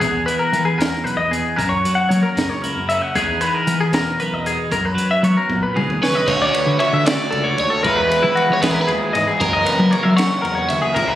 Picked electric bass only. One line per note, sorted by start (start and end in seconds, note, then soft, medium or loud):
0.02 0.25 E2 medium
0.53 0.65 E3 medium
0.79 0.91 E2 medium
1.04 1.16 B1 medium
1.17 1.41 E2 medium
1.59 1.82 F#2 medium
2.10 2.22 F#3 medium
2.37 2.49 F#2 medium
2.62 2.74 C#2 medium
2.75 2.99 F#2 medium
3.16 3.39 E2 loud
3.67 3.79 E3 medium
3.92 4.04 E2 medium
4.20 4.31 B1 medium
4.32 4.56 E2 medium
4.72 4.95 F#2 loud
5.23 5.35 F#3 medium
5.49 5.61 F#2 medium
5.76 5.88 C#2 medium
5.88 6.12 D#2 medium
6.28 6.51 D2 loud
6.66 6.78 D3 medium
6.93 7.16 D3 loud
7.32 7.55 C#2 loud
7.58 7.69 D#2 loud
7.85 8.08 E2 loud
8.24 8.35 E3 medium
8.50 8.73 E3 loud
8.89 9.12 D#2 loud
9.15 9.26 G#2 loud
9.41 9.64 F#2 loud
9.79 9.91 F#3 medium
10.05 10.28 F#3 loud
10.44 10.67 E2 loud
10.70 10.82 D2 loud
10.97 11.15 C#2 loud